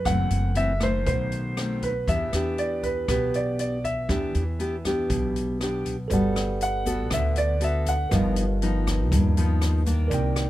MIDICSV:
0, 0, Header, 1, 6, 480
1, 0, Start_track
1, 0, Tempo, 502092
1, 72, Time_signature, 4, 2, 24, 8
1, 10037, End_track
2, 0, Start_track
2, 0, Title_t, "Grand piano"
2, 0, Program_c, 0, 0
2, 58, Note_on_c, 0, 78, 78
2, 543, Note_on_c, 0, 76, 86
2, 561, Note_off_c, 0, 78, 0
2, 795, Note_on_c, 0, 72, 70
2, 796, Note_off_c, 0, 76, 0
2, 1006, Note_off_c, 0, 72, 0
2, 1021, Note_on_c, 0, 72, 69
2, 1752, Note_on_c, 0, 71, 67
2, 1772, Note_off_c, 0, 72, 0
2, 1978, Note_off_c, 0, 71, 0
2, 1996, Note_on_c, 0, 76, 78
2, 2474, Note_on_c, 0, 74, 75
2, 2492, Note_off_c, 0, 76, 0
2, 2709, Note_on_c, 0, 71, 70
2, 2724, Note_off_c, 0, 74, 0
2, 2941, Note_off_c, 0, 71, 0
2, 2955, Note_on_c, 0, 71, 63
2, 3205, Note_off_c, 0, 71, 0
2, 3208, Note_on_c, 0, 74, 71
2, 3424, Note_off_c, 0, 74, 0
2, 3438, Note_on_c, 0, 74, 76
2, 3676, Note_on_c, 0, 76, 75
2, 3687, Note_off_c, 0, 74, 0
2, 5562, Note_off_c, 0, 76, 0
2, 6335, Note_on_c, 0, 78, 74
2, 6775, Note_off_c, 0, 78, 0
2, 6821, Note_on_c, 0, 76, 70
2, 7045, Note_off_c, 0, 76, 0
2, 7054, Note_on_c, 0, 74, 77
2, 7280, Note_off_c, 0, 74, 0
2, 7304, Note_on_c, 0, 76, 70
2, 7525, Note_off_c, 0, 76, 0
2, 7539, Note_on_c, 0, 78, 75
2, 7763, Note_off_c, 0, 78, 0
2, 10037, End_track
3, 0, Start_track
3, 0, Title_t, "Tine electric piano"
3, 0, Program_c, 1, 4
3, 5812, Note_on_c, 1, 69, 50
3, 5829, Note_on_c, 1, 71, 49
3, 5848, Note_on_c, 1, 74, 45
3, 5868, Note_on_c, 1, 78, 59
3, 6017, Control_c, 1, 64, 127
3, 7706, Note_off_c, 1, 69, 0
3, 7715, Note_off_c, 1, 71, 0
3, 7724, Note_off_c, 1, 74, 0
3, 7735, Note_off_c, 1, 78, 0
3, 7739, Note_on_c, 1, 70, 38
3, 7753, Note_on_c, 1, 71, 41
3, 7768, Note_on_c, 1, 75, 39
3, 7774, Control_c, 1, 64, 0
3, 7789, Note_on_c, 1, 77, 52
3, 7953, Control_c, 1, 64, 127
3, 9624, Note_off_c, 1, 70, 0
3, 9631, Note_off_c, 1, 71, 0
3, 9635, Note_on_c, 1, 70, 54
3, 9638, Note_off_c, 1, 75, 0
3, 9649, Note_off_c, 1, 77, 0
3, 9655, Note_on_c, 1, 74, 46
3, 9675, Note_on_c, 1, 63, 44
3, 9685, Control_c, 1, 64, 0
3, 9695, Note_on_c, 1, 79, 64
3, 9844, Control_c, 1, 64, 127
3, 10037, Note_off_c, 1, 63, 0
3, 10037, Note_off_c, 1, 70, 0
3, 10037, Note_off_c, 1, 74, 0
3, 10037, Note_off_c, 1, 79, 0
3, 10037, End_track
4, 0, Start_track
4, 0, Title_t, "Nylon-string guitar"
4, 0, Program_c, 2, 24
4, 60, Note_on_c, 2, 42, 45
4, 63, Note_on_c, 2, 52, 43
4, 69, Note_on_c, 2, 57, 46
4, 69, Note_on_c, 2, 60, 48
4, 510, Note_off_c, 2, 52, 0
4, 511, Note_off_c, 2, 57, 0
4, 514, Note_off_c, 2, 60, 0
4, 526, Note_on_c, 2, 52, 49
4, 534, Note_on_c, 2, 57, 44
4, 537, Note_on_c, 2, 60, 60
4, 682, Note_off_c, 2, 52, 0
4, 684, Note_off_c, 2, 57, 0
4, 687, Note_off_c, 2, 60, 0
4, 764, Note_on_c, 2, 51, 45
4, 771, Note_on_c, 2, 57, 51
4, 1005, Note_off_c, 2, 42, 0
4, 1018, Note_on_c, 2, 47, 45
4, 1463, Note_off_c, 2, 51, 0
4, 1464, Note_off_c, 2, 57, 0
4, 1507, Note_on_c, 2, 51, 48
4, 1512, Note_on_c, 2, 57, 41
4, 1519, Note_on_c, 2, 60, 52
4, 1835, Note_off_c, 2, 51, 0
4, 1837, Note_off_c, 2, 57, 0
4, 1841, Note_off_c, 2, 60, 0
4, 1965, Note_off_c, 2, 47, 0
4, 1993, Note_on_c, 2, 52, 46
4, 1993, Note_on_c, 2, 59, 46
4, 1999, Note_on_c, 2, 62, 45
4, 2003, Note_on_c, 2, 67, 46
4, 2196, Note_off_c, 2, 59, 0
4, 2200, Note_off_c, 2, 62, 0
4, 2202, Note_off_c, 2, 67, 0
4, 2238, Note_on_c, 2, 59, 51
4, 2242, Note_on_c, 2, 62, 47
4, 2245, Note_on_c, 2, 67, 57
4, 2922, Note_off_c, 2, 59, 0
4, 2922, Note_off_c, 2, 62, 0
4, 2923, Note_off_c, 2, 67, 0
4, 2933, Note_off_c, 2, 52, 0
4, 2951, Note_on_c, 2, 47, 49
4, 2955, Note_on_c, 2, 59, 44
4, 2960, Note_on_c, 2, 62, 47
4, 2966, Note_on_c, 2, 67, 49
4, 3604, Note_off_c, 2, 59, 0
4, 3606, Note_off_c, 2, 62, 0
4, 3609, Note_off_c, 2, 67, 0
4, 3894, Note_off_c, 2, 47, 0
4, 3908, Note_on_c, 2, 59, 42
4, 3909, Note_on_c, 2, 52, 48
4, 3918, Note_on_c, 2, 62, 51
4, 3918, Note_on_c, 2, 67, 47
4, 4224, Note_off_c, 2, 59, 0
4, 4228, Note_off_c, 2, 67, 0
4, 4229, Note_off_c, 2, 62, 0
4, 4392, Note_on_c, 2, 59, 54
4, 4397, Note_on_c, 2, 62, 49
4, 4404, Note_on_c, 2, 67, 58
4, 4539, Note_off_c, 2, 59, 0
4, 4540, Note_off_c, 2, 62, 0
4, 4545, Note_off_c, 2, 67, 0
4, 4642, Note_on_c, 2, 59, 47
4, 4651, Note_on_c, 2, 62, 53
4, 4652, Note_on_c, 2, 67, 59
4, 4853, Note_off_c, 2, 52, 0
4, 4886, Note_on_c, 2, 47, 44
4, 5325, Note_off_c, 2, 59, 0
4, 5329, Note_off_c, 2, 67, 0
4, 5330, Note_off_c, 2, 62, 0
4, 5371, Note_on_c, 2, 59, 39
4, 5377, Note_on_c, 2, 67, 54
4, 5379, Note_on_c, 2, 62, 43
4, 5690, Note_off_c, 2, 59, 0
4, 5692, Note_off_c, 2, 67, 0
4, 5694, Note_off_c, 2, 62, 0
4, 5821, Note_off_c, 2, 47, 0
4, 5852, Note_on_c, 2, 55, 47
4, 5859, Note_on_c, 2, 59, 49
4, 5860, Note_on_c, 2, 66, 48
4, 5860, Note_on_c, 2, 69, 47
4, 6530, Note_off_c, 2, 66, 0
4, 6531, Note_off_c, 2, 59, 0
4, 6533, Note_off_c, 2, 69, 0
4, 6555, Note_on_c, 2, 59, 56
4, 6564, Note_on_c, 2, 66, 49
4, 6568, Note_on_c, 2, 69, 64
4, 6784, Note_off_c, 2, 55, 0
4, 6793, Note_on_c, 2, 50, 52
4, 7239, Note_off_c, 2, 59, 0
4, 7244, Note_off_c, 2, 66, 0
4, 7246, Note_off_c, 2, 69, 0
4, 7269, Note_on_c, 2, 59, 53
4, 7276, Note_on_c, 2, 66, 46
4, 7283, Note_on_c, 2, 69, 56
4, 7597, Note_off_c, 2, 59, 0
4, 7601, Note_off_c, 2, 66, 0
4, 7604, Note_off_c, 2, 69, 0
4, 7732, Note_off_c, 2, 50, 0
4, 7759, Note_on_c, 2, 43, 50
4, 7760, Note_on_c, 2, 53, 47
4, 7762, Note_on_c, 2, 59, 49
4, 7769, Note_on_c, 2, 63, 58
4, 8068, Note_off_c, 2, 53, 0
4, 8070, Note_off_c, 2, 59, 0
4, 8072, Note_off_c, 2, 63, 0
4, 8239, Note_on_c, 2, 53, 54
4, 8246, Note_on_c, 2, 59, 54
4, 8251, Note_on_c, 2, 63, 65
4, 8693, Note_off_c, 2, 43, 0
4, 8730, Note_on_c, 2, 43, 49
4, 8918, Note_off_c, 2, 53, 0
4, 8922, Note_off_c, 2, 59, 0
4, 8923, Note_off_c, 2, 63, 0
4, 8958, Note_on_c, 2, 53, 59
4, 8965, Note_on_c, 2, 59, 61
4, 8968, Note_on_c, 2, 63, 70
4, 9398, Note_off_c, 2, 53, 0
4, 9398, Note_off_c, 2, 59, 0
4, 9402, Note_off_c, 2, 63, 0
4, 9426, Note_on_c, 2, 51, 54
4, 9430, Note_on_c, 2, 58, 57
4, 9435, Note_on_c, 2, 62, 64
4, 9655, Note_off_c, 2, 43, 0
4, 9671, Note_on_c, 2, 48, 54
4, 10037, Note_off_c, 2, 48, 0
4, 10037, Note_off_c, 2, 51, 0
4, 10037, Note_off_c, 2, 58, 0
4, 10037, Note_off_c, 2, 62, 0
4, 10037, End_track
5, 0, Start_track
5, 0, Title_t, "Upright bass"
5, 0, Program_c, 3, 32
5, 55, Note_on_c, 3, 30, 84
5, 287, Note_off_c, 3, 30, 0
5, 293, Note_on_c, 3, 30, 73
5, 986, Note_off_c, 3, 30, 0
5, 1016, Note_on_c, 3, 35, 86
5, 1950, Note_off_c, 3, 35, 0
5, 1982, Note_on_c, 3, 40, 96
5, 2213, Note_off_c, 3, 40, 0
5, 2226, Note_on_c, 3, 40, 76
5, 2915, Note_off_c, 3, 40, 0
5, 2948, Note_on_c, 3, 35, 79
5, 3878, Note_off_c, 3, 35, 0
5, 3908, Note_on_c, 3, 40, 84
5, 4138, Note_off_c, 3, 40, 0
5, 4157, Note_on_c, 3, 40, 76
5, 4842, Note_off_c, 3, 40, 0
5, 4871, Note_on_c, 3, 35, 81
5, 5799, Note_off_c, 3, 35, 0
5, 5830, Note_on_c, 3, 31, 87
5, 6797, Note_off_c, 3, 31, 0
5, 6797, Note_on_c, 3, 38, 90
5, 7719, Note_off_c, 3, 38, 0
5, 7754, Note_on_c, 3, 31, 87
5, 8717, Note_off_c, 3, 31, 0
5, 8717, Note_on_c, 3, 39, 88
5, 9634, Note_off_c, 3, 39, 0
5, 9660, Note_on_c, 3, 36, 78
5, 10037, Note_off_c, 3, 36, 0
5, 10037, End_track
6, 0, Start_track
6, 0, Title_t, "Drums"
6, 49, Note_on_c, 9, 37, 42
6, 49, Note_on_c, 9, 42, 45
6, 53, Note_on_c, 9, 36, 44
6, 145, Note_off_c, 9, 37, 0
6, 145, Note_off_c, 9, 42, 0
6, 149, Note_off_c, 9, 36, 0
6, 291, Note_on_c, 9, 42, 43
6, 387, Note_off_c, 9, 42, 0
6, 528, Note_on_c, 9, 42, 39
6, 623, Note_off_c, 9, 42, 0
6, 768, Note_on_c, 9, 37, 50
6, 768, Note_on_c, 9, 42, 36
6, 776, Note_on_c, 9, 36, 21
6, 863, Note_off_c, 9, 37, 0
6, 863, Note_off_c, 9, 42, 0
6, 871, Note_off_c, 9, 36, 0
6, 1015, Note_on_c, 9, 42, 50
6, 1018, Note_on_c, 9, 36, 52
6, 1111, Note_off_c, 9, 42, 0
6, 1114, Note_off_c, 9, 36, 0
6, 1258, Note_on_c, 9, 42, 34
6, 1353, Note_off_c, 9, 42, 0
6, 1501, Note_on_c, 9, 37, 57
6, 1501, Note_on_c, 9, 42, 41
6, 1597, Note_off_c, 9, 37, 0
6, 1597, Note_off_c, 9, 42, 0
6, 1743, Note_on_c, 9, 36, 17
6, 1743, Note_on_c, 9, 42, 34
6, 1839, Note_off_c, 9, 36, 0
6, 1839, Note_off_c, 9, 42, 0
6, 1985, Note_on_c, 9, 42, 42
6, 1986, Note_on_c, 9, 36, 44
6, 2081, Note_off_c, 9, 36, 0
6, 2081, Note_off_c, 9, 42, 0
6, 2225, Note_on_c, 9, 37, 53
6, 2225, Note_on_c, 9, 42, 40
6, 2321, Note_off_c, 9, 37, 0
6, 2321, Note_off_c, 9, 42, 0
6, 2467, Note_on_c, 9, 42, 36
6, 2562, Note_off_c, 9, 42, 0
6, 2707, Note_on_c, 9, 36, 22
6, 2708, Note_on_c, 9, 42, 35
6, 2803, Note_off_c, 9, 36, 0
6, 2804, Note_off_c, 9, 42, 0
6, 2947, Note_on_c, 9, 37, 51
6, 2947, Note_on_c, 9, 42, 52
6, 2949, Note_on_c, 9, 36, 49
6, 3043, Note_off_c, 9, 37, 0
6, 3043, Note_off_c, 9, 42, 0
6, 3044, Note_off_c, 9, 36, 0
6, 3192, Note_on_c, 9, 42, 35
6, 3288, Note_off_c, 9, 42, 0
6, 3431, Note_on_c, 9, 42, 42
6, 3527, Note_off_c, 9, 42, 0
6, 3671, Note_on_c, 9, 36, 17
6, 3677, Note_on_c, 9, 42, 34
6, 3767, Note_off_c, 9, 36, 0
6, 3773, Note_off_c, 9, 42, 0
6, 3910, Note_on_c, 9, 37, 47
6, 3910, Note_on_c, 9, 42, 42
6, 3912, Note_on_c, 9, 36, 44
6, 4006, Note_off_c, 9, 37, 0
6, 4006, Note_off_c, 9, 42, 0
6, 4007, Note_off_c, 9, 36, 0
6, 4154, Note_on_c, 9, 42, 39
6, 4250, Note_off_c, 9, 42, 0
6, 4394, Note_on_c, 9, 42, 38
6, 4490, Note_off_c, 9, 42, 0
6, 4634, Note_on_c, 9, 36, 19
6, 4636, Note_on_c, 9, 37, 49
6, 4636, Note_on_c, 9, 42, 38
6, 4729, Note_off_c, 9, 36, 0
6, 4732, Note_off_c, 9, 37, 0
6, 4732, Note_off_c, 9, 42, 0
6, 4873, Note_on_c, 9, 42, 49
6, 4874, Note_on_c, 9, 36, 52
6, 4969, Note_off_c, 9, 42, 0
6, 4970, Note_off_c, 9, 36, 0
6, 5122, Note_on_c, 9, 42, 33
6, 5218, Note_off_c, 9, 42, 0
6, 5360, Note_on_c, 9, 37, 54
6, 5360, Note_on_c, 9, 42, 41
6, 5456, Note_off_c, 9, 37, 0
6, 5456, Note_off_c, 9, 42, 0
6, 5596, Note_on_c, 9, 36, 19
6, 5598, Note_on_c, 9, 42, 36
6, 5692, Note_off_c, 9, 36, 0
6, 5694, Note_off_c, 9, 42, 0
6, 5834, Note_on_c, 9, 42, 44
6, 5836, Note_on_c, 9, 36, 48
6, 5843, Note_on_c, 9, 82, 65
6, 5929, Note_off_c, 9, 42, 0
6, 5932, Note_off_c, 9, 36, 0
6, 5938, Note_off_c, 9, 82, 0
6, 6081, Note_on_c, 9, 37, 57
6, 6081, Note_on_c, 9, 42, 42
6, 6082, Note_on_c, 9, 82, 29
6, 6176, Note_off_c, 9, 37, 0
6, 6176, Note_off_c, 9, 42, 0
6, 6178, Note_off_c, 9, 82, 0
6, 6317, Note_on_c, 9, 42, 39
6, 6324, Note_on_c, 9, 82, 52
6, 6412, Note_off_c, 9, 42, 0
6, 6420, Note_off_c, 9, 82, 0
6, 6557, Note_on_c, 9, 36, 22
6, 6560, Note_on_c, 9, 42, 37
6, 6563, Note_on_c, 9, 82, 66
6, 6653, Note_off_c, 9, 36, 0
6, 6655, Note_off_c, 9, 42, 0
6, 6659, Note_off_c, 9, 82, 0
6, 6793, Note_on_c, 9, 37, 62
6, 6793, Note_on_c, 9, 42, 50
6, 6797, Note_on_c, 9, 36, 54
6, 6811, Note_on_c, 9, 82, 57
6, 6888, Note_off_c, 9, 37, 0
6, 6888, Note_off_c, 9, 42, 0
6, 6893, Note_off_c, 9, 36, 0
6, 6907, Note_off_c, 9, 82, 0
6, 7033, Note_on_c, 9, 42, 42
6, 7048, Note_on_c, 9, 82, 25
6, 7129, Note_off_c, 9, 42, 0
6, 7143, Note_off_c, 9, 82, 0
6, 7272, Note_on_c, 9, 42, 47
6, 7367, Note_off_c, 9, 42, 0
6, 7517, Note_on_c, 9, 36, 20
6, 7517, Note_on_c, 9, 42, 40
6, 7520, Note_on_c, 9, 82, 62
6, 7613, Note_off_c, 9, 36, 0
6, 7613, Note_off_c, 9, 42, 0
6, 7616, Note_off_c, 9, 82, 0
6, 7756, Note_on_c, 9, 37, 46
6, 7756, Note_on_c, 9, 42, 48
6, 7757, Note_on_c, 9, 36, 48
6, 7759, Note_on_c, 9, 82, 64
6, 7852, Note_off_c, 9, 37, 0
6, 7852, Note_off_c, 9, 42, 0
6, 7853, Note_off_c, 9, 36, 0
6, 7855, Note_off_c, 9, 82, 0
6, 7993, Note_on_c, 9, 42, 47
6, 8003, Note_on_c, 9, 82, 29
6, 8088, Note_off_c, 9, 42, 0
6, 8099, Note_off_c, 9, 82, 0
6, 8240, Note_on_c, 9, 42, 42
6, 8335, Note_off_c, 9, 42, 0
6, 8477, Note_on_c, 9, 36, 22
6, 8481, Note_on_c, 9, 37, 60
6, 8481, Note_on_c, 9, 42, 44
6, 8484, Note_on_c, 9, 82, 59
6, 8573, Note_off_c, 9, 36, 0
6, 8577, Note_off_c, 9, 37, 0
6, 8577, Note_off_c, 9, 42, 0
6, 8579, Note_off_c, 9, 82, 0
6, 8717, Note_on_c, 9, 36, 60
6, 8720, Note_on_c, 9, 42, 54
6, 8722, Note_on_c, 9, 82, 53
6, 8812, Note_off_c, 9, 36, 0
6, 8815, Note_off_c, 9, 42, 0
6, 8817, Note_off_c, 9, 82, 0
6, 8956, Note_on_c, 9, 82, 25
6, 8958, Note_on_c, 9, 42, 40
6, 9052, Note_off_c, 9, 82, 0
6, 9053, Note_off_c, 9, 42, 0
6, 9191, Note_on_c, 9, 37, 63
6, 9191, Note_on_c, 9, 42, 43
6, 9194, Note_on_c, 9, 82, 54
6, 9287, Note_off_c, 9, 37, 0
6, 9287, Note_off_c, 9, 42, 0
6, 9290, Note_off_c, 9, 82, 0
6, 9429, Note_on_c, 9, 42, 36
6, 9430, Note_on_c, 9, 36, 22
6, 9432, Note_on_c, 9, 82, 60
6, 9525, Note_off_c, 9, 36, 0
6, 9525, Note_off_c, 9, 42, 0
6, 9527, Note_off_c, 9, 82, 0
6, 9665, Note_on_c, 9, 42, 44
6, 9667, Note_on_c, 9, 36, 53
6, 9668, Note_on_c, 9, 82, 62
6, 9760, Note_off_c, 9, 42, 0
6, 9762, Note_off_c, 9, 36, 0
6, 9764, Note_off_c, 9, 82, 0
6, 9904, Note_on_c, 9, 37, 62
6, 9904, Note_on_c, 9, 42, 41
6, 9911, Note_on_c, 9, 82, 28
6, 10000, Note_off_c, 9, 37, 0
6, 10000, Note_off_c, 9, 42, 0
6, 10006, Note_off_c, 9, 82, 0
6, 10037, End_track
0, 0, End_of_file